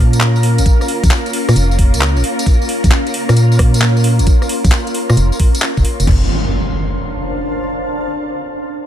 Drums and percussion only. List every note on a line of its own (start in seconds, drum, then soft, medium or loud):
0.13 closed hi-hat medium
0.13 tambourine medium
0.21 clap loud
0.21 tambourine medium
0.36 tambourine soft
0.43 open hi-hat loud
0.58 closed hi-hat medium
0.58 tambourine medium
0.66 kick loud
0.66 closed hi-hat medium
0.66 tambourine medium
0.81 cross-stick soft
0.81 tambourine soft
0.88 open hi-hat loud
1.04 kick loud
1.04 closed hi-hat medium
1.04 tambourine medium
1.11 clap loud
1.26 closed hi-hat soft
1.26 tambourine soft
1.33 open hi-hat loud
1.49 cross-stick medium
1.49 tambourine medium
1.56 closed hi-hat medium
1.56 tambourine medium
1.71 tambourine soft
1.79 kick loud
1.79 open hi-hat loud
1.94 closed hi-hat medium
1.94 tambourine medium
2.01 clap loud
2.17 tambourine soft
2.24 open hi-hat loud
2.39 closed hi-hat medium
2.39 tambourine medium
2.46 kick loud
2.46 closed hi-hat medium
2.62 tambourine soft
2.69 open hi-hat loud
2.84 kick loud
2.84 closed hi-hat medium
2.84 tambourine medium
2.92 clap loud
2.92 tambourine medium
3.07 closed hi-hat soft
3.07 tambourine soft
3.14 open hi-hat loud
3.29 cross-stick medium
3.29 tambourine medium
3.37 closed hi-hat medium
3.37 tambourine medium
3.52 tambourine soft
3.59 kick loud
3.59 cross-stick medium
3.59 open hi-hat loud
3.74 closed hi-hat medium
3.74 tambourine medium
3.82 clap loud
3.82 tambourine medium
3.97 tambourine soft
4.04 open hi-hat loud
4.19 closed hi-hat medium
4.19 tambourine medium
4.27 kick loud
4.27 closed hi-hat medium
4.27 tambourine medium
4.42 cross-stick soft
4.42 tambourine soft
4.49 open hi-hat loud
4.65 kick loud
4.65 closed hi-hat medium
4.65 tambourine medium
4.72 clap loud
4.87 closed hi-hat soft
4.87 tambourine soft
4.94 open hi-hat loud
5.10 cross-stick medium
5.10 tambourine medium
5.17 closed hi-hat medium
5.17 tambourine medium
5.32 tambourine soft
5.40 kick loud
5.40 open hi-hat loud
5.55 closed hi-hat medium
5.55 tambourine medium
5.62 clap loud
5.77 kick medium
5.77 tambourine soft
5.85 open hi-hat loud
6.00 closed hi-hat medium
6.00 tambourine medium
6.07 kick loud
6.07 crash medium